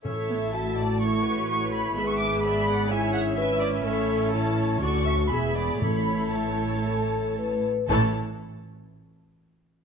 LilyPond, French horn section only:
\new Staff \with { instrumentName = "French horn section" } { \time 4/4 \key a \major \tempo 4 = 122 a'4 fis'4 e'2 | gis'2 e'4 b'4 | a'4 e'4 fis'4 gis'4 | a'4 e'4 a'4 b'4 |
<e cis'>8 r2. r8 | }